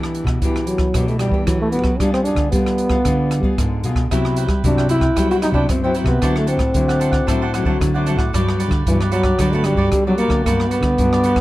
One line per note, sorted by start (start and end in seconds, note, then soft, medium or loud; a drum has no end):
0.00 0.23 E3 medium
0.00 0.40 E3 medium
0.00 0.38 B3 medium
0.00 0.39 D4 medium
0.00 0.39 G4 medium
0.00 cross-stick medium
0.15 closed hi-hat soft
0.24 0.38 B2 medium
0.24 kick medium
0.24 cross-stick medium
0.42 0.93 B2 medium
0.42 0.87 E3 medium
0.42 0.68 E3 medium
0.42 0.77 B3 soft
0.42 0.77 D4 medium
0.42 0.77 G4 medium
0.42 kick medium
0.42 closed hi-hat medium
0.56 cross-stick medium
0.67 1.10 F#3 medium
0.67 closed hi-hat soft
0.78 kick medium
0.78 cross-stick medium
0.94 1.28 B2 medium
0.94 1.45 E3 medium
0.94 1.11 B3 medium
0.94 1.11 D4 medium
0.94 1.11 G4 medium
0.94 kick medium
0.94 cross-stick medium
0.94 closed hi-hat medium
1.08 1.18 A3 medium
1.08 closed hi-hat soft
1.19 1.48 G3 medium
1.19 1.30 B3 medium
1.19 1.30 D4 medium
1.19 1.30 G4 medium
1.19 cross-stick medium
1.19 closed hi-hat soft
1.29 1.43 E3 medium
1.29 1.69 B3 medium
1.29 kick medium
1.34 1.69 D4 medium
1.34 1.69 G4 medium
1.46 1.98 B2 medium
1.46 1.81 E3 loud
1.46 1.60 F#3 medium
1.46 kick medium
1.46 cross-stick medium
1.46 closed hi-hat medium
1.62 1.67 A3 medium
1.72 2.01 B3 medium
1.72 1.89 B3 soft
1.72 1.90 D4 soft
1.72 1.90 G4 medium
1.72 closed hi-hat soft
1.82 1.95 F#3 medium
1.82 kick medium
1.82 cross-stick medium
2.00 2.34 G3 medium
2.00 2.51 G3 medium
2.00 2.23 B3 medium
2.00 2.13 D4 medium
2.00 2.23 F4 medium
2.00 2.23 G#4 medium
2.00 kick medium
2.00 cross-stick medium
2.00 closed hi-hat medium
2.13 2.23 C4 medium
2.13 cross-stick medium
2.24 2.49 B3 medium
2.24 2.50 D4 medium
2.24 2.49 F4 medium
2.24 2.49 G#4 medium
2.24 closed hi-hat soft
2.35 2.48 D3 medium
2.35 kick medium
2.35 cross-stick medium
2.35 closed hi-hat soft
2.51 3.04 D3 soft
2.51 2.98 G3 medium
2.51 3.80 B3 medium
2.51 2.89 B3 medium
2.51 2.89 F4 medium
2.51 2.89 G#4 medium
2.51 kick medium
2.51 closed hi-hat medium
2.66 cross-stick medium
2.66 closed hi-hat soft
2.78 closed hi-hat soft
2.90 3.01 B3 medium
2.90 3.01 F4 medium
2.90 3.01 G#4 medium
2.90 kick medium
2.90 cross-stick medium
3.05 3.39 D3 medium
3.05 3.56 G3 medium
3.05 3.42 B3 medium
3.05 3.42 F4 medium
3.05 3.42 G#4 medium
3.05 kick medium
3.05 cross-stick medium
3.05 closed hi-hat medium
3.31 cross-stick medium
3.31 closed hi-hat soft
3.40 3.54 G3 medium
3.40 3.80 B3 medium
3.40 3.80 F4 medium
3.40 3.80 G#4 medium
3.40 kick medium
3.58 3.82 G#2 medium
3.58 4.09 D3 medium
3.58 kick medium
3.58 cross-stick medium
3.58 closed hi-hat medium
3.83 4.08 B2 medium
3.83 4.02 B3 soft
3.83 4.02 F4 soft
3.83 4.02 G#4 medium
3.83 closed hi-hat soft
3.96 kick medium
3.96 cross-stick medium
4.11 4.45 C3 medium
4.11 4.62 C3 medium
4.11 4.45 F#3 medium
4.11 4.46 B3 medium
4.11 4.35 E4 medium
4.11 4.46 E4 medium
4.11 4.36 B4 medium
4.11 4.36 C5 medium
4.11 4.36 G5 medium
4.11 kick medium
4.11 cross-stick medium
4.11 closed hi-hat medium
4.25 cross-stick medium
4.36 4.76 E4 soft
4.36 4.76 B4 soft
4.36 4.76 C5 soft
4.36 4.76 G5 soft
4.36 closed hi-hat medium
4.46 4.60 G3 medium
4.46 kick medium
4.46 cross-stick medium
4.64 5.14 G2 medium
4.64 5.09 C3 medium
4.64 4.98 F#3 medium
4.64 4.98 B3 soft
4.64 4.90 D4 medium
4.64 4.99 E4 medium
4.64 kick medium
4.64 closed hi-hat medium
4.77 4.89 B4 soft
4.77 4.89 C5 soft
4.77 4.89 G5 soft
4.77 cross-stick medium
4.89 5.02 E4 medium
4.89 5.28 E4 loud
4.89 5.00 B4 medium
4.89 5.01 C5 medium
4.89 5.00 G5 medium
4.89 closed hi-hat soft
5.01 5.15 B4 soft
5.01 5.15 C5 soft
5.01 5.15 G5 medium
5.01 kick medium
5.01 cross-stick medium
5.16 5.68 C3 medium
5.16 5.40 F#3 medium
5.16 5.51 G3 medium
5.16 5.40 B3 medium
5.16 5.29 E4 medium
5.16 5.40 E4 medium
5.16 5.29 B4 medium
5.16 5.29 C5 medium
5.16 5.30 G5 medium
5.16 kick medium
5.16 cross-stick medium
5.16 closed hi-hat medium
5.31 5.40 E4 medium
5.31 5.37 F#4 medium
5.31 5.40 B4 medium
5.31 5.40 C5 medium
5.31 5.40 G5 medium
5.31 closed hi-hat soft
5.41 5.52 F#3 medium
5.41 5.52 B3 medium
5.41 5.49 D#4 medium
5.41 5.52 E4 soft
5.41 5.52 E4 medium
5.41 5.53 B4 medium
5.41 5.53 C5 soft
5.41 5.53 G5 medium
5.41 cross-stick medium
5.41 closed hi-hat soft
5.52 5.65 C3 medium
5.52 5.78 F#3 medium
5.52 5.78 B3 medium
5.52 5.67 D4 medium
5.52 5.64 E4 medium
5.52 5.65 B4 medium
5.52 5.64 C5 medium
5.52 5.65 G5 medium
5.52 kick medium
5.56 5.79 E4 medium
5.69 6.21 G2 medium
5.69 6.04 C4 medium
5.69 kick medium
5.69 cross-stick medium
5.69 closed hi-hat medium
5.83 5.93 F#3 medium
5.83 5.93 B3 medium
5.83 5.95 C4 medium
5.83 5.93 E4 medium
5.83 5.95 B4 soft
5.83 5.94 C5 soft
5.83 5.95 G5 soft
5.94 6.11 F#3 medium
5.94 6.12 B3 medium
5.94 6.08 E4 medium
5.94 6.12 E4 medium
5.94 6.06 B4 medium
5.94 6.07 C5 medium
5.94 6.05 G5 medium
5.94 closed hi-hat soft
6.04 6.18 C3 medium
6.04 6.33 B3 medium
6.04 6.21 B4 soft
6.04 6.20 G5 soft
6.04 kick medium
6.04 cross-stick medium
6.08 6.21 C5 soft
6.21 6.56 D3 medium
6.21 6.73 D3 medium
6.21 6.57 F#3 medium
6.21 6.57 C4 medium
6.21 6.45 D4 medium
6.21 6.57 E4 medium
6.21 6.46 C5 medium
6.21 6.46 D5 medium
6.21 6.47 F#5 medium
6.21 kick medium
6.21 cross-stick medium
6.21 closed hi-hat medium
6.36 6.48 A3 medium
6.36 cross-stick medium
6.47 8.04 C4 medium
6.47 6.87 D4 soft
6.47 6.87 C5 medium
6.47 6.87 D5 soft
6.47 6.87 F#5 soft
6.47 closed hi-hat soft
6.57 6.71 A2 medium
6.57 kick medium
6.57 cross-stick medium
6.57 closed hi-hat soft
6.74 7.26 A2 medium
6.74 7.20 D3 medium
6.74 7.24 F#3 medium
6.74 7.25 C4 medium
6.74 7.25 E4 medium
6.74 kick medium
6.74 closed hi-hat medium
6.88 6.99 C5 soft
6.88 7.00 D5 soft
6.88 7.00 F#5 soft
6.88 cross-stick medium
6.88 closed hi-hat soft
6.99 7.13 D4 medium
6.99 7.12 C5 medium
6.99 7.11 D5 medium
6.99 7.10 F#5 medium
6.99 closed hi-hat soft
7.11 7.26 C5 soft
7.11 7.26 D5 soft
7.11 7.26 F#5 soft
7.11 kick medium
7.11 cross-stick medium
7.27 7.62 A2 medium
7.27 7.79 D3 medium
7.27 7.44 F#3 medium
7.27 7.44 C4 medium
7.27 7.40 D4 medium
7.27 7.45 E4 medium
7.27 7.40 C5 medium
7.27 7.41 D5 medium
7.27 7.41 F#5 medium
7.27 kick medium
7.27 cross-stick medium
7.27 closed hi-hat medium
7.41 7.51 D4 medium
7.41 7.51 C5 medium
7.41 7.51 D5 medium
7.41 7.51 F#5 medium
7.53 7.63 F#3 medium
7.53 7.63 C4 medium
7.53 7.64 D4 soft
7.53 7.63 E4 medium
7.53 7.65 C5 medium
7.53 7.65 D5 medium
7.53 7.65 F#5 medium
7.53 cross-stick medium
7.53 closed hi-hat soft
7.63 7.77 D3 medium
7.63 7.90 F#3 medium
7.63 7.90 C4 medium
7.63 7.76 D4 medium
7.63 7.90 E4 medium
7.63 7.76 C5 medium
7.63 7.76 D5 medium
7.63 7.77 F#5 medium
7.63 kick medium
7.81 8.32 A2 medium
7.81 8.15 D3 medium
7.81 kick medium
7.81 cross-stick medium
7.81 closed hi-hat medium
7.94 8.04 F#3 medium
7.94 8.04 C4 medium
7.94 8.04 E4 medium
7.94 8.05 C5 soft
7.94 8.06 D5 soft
7.94 8.07 F#5 soft
8.06 8.23 F#3 soft
8.06 8.23 C4 medium
8.06 8.19 D4 medium
8.06 8.23 E4 medium
8.06 8.18 C5 medium
8.06 8.17 D5 medium
8.06 8.16 F#5 medium
8.06 closed hi-hat soft
8.16 8.29 A2 medium
8.16 8.33 C5 soft
8.16 8.32 D5 soft
8.16 8.32 F#5 soft
8.16 kick medium
8.16 cross-stick medium
8.33 8.68 G2 medium
8.33 8.85 G2 medium
8.33 8.68 F#3 medium
8.33 8.69 B3 medium
8.33 8.69 D4 medium
8.33 8.57 F#4 medium
8.33 8.58 G4 medium
8.33 8.59 B4 medium
8.33 8.59 D5 medium
8.33 kick medium
8.33 cross-stick medium
8.33 closed hi-hat medium
8.49 cross-stick medium
8.58 8.98 F#4 soft
8.58 8.99 G4 soft
8.58 8.99 B4 medium
8.58 8.99 D5 medium
8.58 closed hi-hat medium
8.68 8.82 D3 medium
8.68 kick medium
8.68 cross-stick medium
8.87 9.32 G2 medium
8.87 9.38 D3 medium
8.87 9.00 E3 medium
8.87 9.22 F#3 medium
8.87 9.22 B3 medium
8.87 9.22 D4 medium
8.87 kick medium
8.87 closed hi-hat medium
9.00 9.11 G4 soft
9.00 9.11 B4 soft
9.00 9.12 D5 soft
9.00 cross-stick medium
9.11 9.55 F#3 medium
9.11 9.25 F#4 medium
9.11 9.23 G4 medium
9.11 9.23 B4 medium
9.11 9.22 D5 medium
9.11 closed hi-hat soft
9.23 9.38 G4 soft
9.23 9.38 B4 soft
9.23 9.37 D5 soft
9.23 kick medium
9.23 cross-stick medium
9.39 9.91 G2 medium
9.39 9.74 D3 medium
9.39 9.63 F#3 medium
9.39 9.63 B3 medium
9.39 9.63 D4 medium
9.39 9.52 F#4 medium
9.39 9.52 G4 medium
9.39 9.53 B4 medium
9.39 9.53 D5 medium
9.39 kick medium
9.39 cross-stick medium
9.39 closed hi-hat medium
9.53 9.66 A3 medium
9.53 9.63 F#4 medium
9.53 9.63 G4 medium
9.53 9.63 B4 medium
9.53 9.63 D5 medium
9.53 closed hi-hat soft
9.64 9.74 F#3 medium
9.64 10.06 G3 loud
9.64 9.74 B3 medium
9.64 9.75 D4 medium
9.64 9.76 F#4 soft
9.64 9.76 G4 soft
9.64 9.77 D5 medium
9.64 cross-stick medium
9.64 closed hi-hat soft
9.74 9.88 G2 medium
9.74 10.01 F#3 medium
9.74 10.01 B3 medium
9.74 9.88 F#4 medium
9.74 9.88 G4 medium
9.74 9.88 B4 medium
9.74 9.88 D5 medium
9.74 kick medium
9.78 10.02 D4 medium
9.92 10.44 D3 medium
9.92 10.27 G3 loud
9.92 kick medium
9.92 cross-stick medium
9.92 closed hi-hat medium
10.07 10.16 F#3 medium
10.07 10.13 F#3 medium
10.07 10.16 B3 medium
10.07 10.16 D4 medium
10.07 10.17 G4 soft
10.07 10.18 B4 soft
10.07 10.18 D5 soft
10.18 10.41 F#3 soft
10.18 10.43 A#3 medium
10.18 10.41 B3 soft
10.18 10.42 D4 medium
10.18 10.31 F#4 medium
10.18 10.31 G4 medium
10.18 10.31 B4 medium
10.18 10.29 D5 medium
10.18 closed hi-hat soft
10.28 10.41 D3 medium
10.28 10.45 B4 soft
10.28 10.44 D5 soft
10.28 kick medium
10.28 cross-stick medium
10.33 10.45 G4 soft
10.44 10.96 G2 medium
10.44 10.80 G2 medium
10.44 10.80 F#3 medium
10.44 10.71 A#3 medium
10.44 10.80 B3 medium
10.44 10.80 D4 medium
10.44 10.70 F#4 medium
10.44 10.70 G4 medium
10.44 10.71 B4 medium
10.44 10.71 D5 medium
10.44 kick medium
10.44 cross-stick medium
10.44 closed hi-hat medium
10.60 cross-stick medium
10.70 11.41 B3 loud
10.70 11.10 F#4 soft
10.70 11.11 G4 soft
10.70 11.11 B4 medium
10.70 11.11 D5 medium
10.70 closed hi-hat soft
10.81 10.94 D3 medium
10.81 kick medium
10.81 cross-stick medium
10.81 closed hi-hat soft
10.98 11.41 G2 medium
10.98 11.41 D3 medium
10.98 11.41 F#3 medium
10.98 11.41 B3 soft
10.98 11.41 D4 medium
10.98 kick medium
10.98 closed hi-hat medium
11.13 11.23 G4 soft
11.13 11.24 B4 soft
11.13 11.25 D5 soft
11.13 cross-stick medium
11.13 closed hi-hat soft
11.24 11.37 F#4 medium
11.24 11.37 G4 medium
11.24 11.37 B4 medium
11.24 11.36 D5 medium
11.24 closed hi-hat soft
11.36 11.41 D5 soft
11.36 kick medium
11.36 cross-stick medium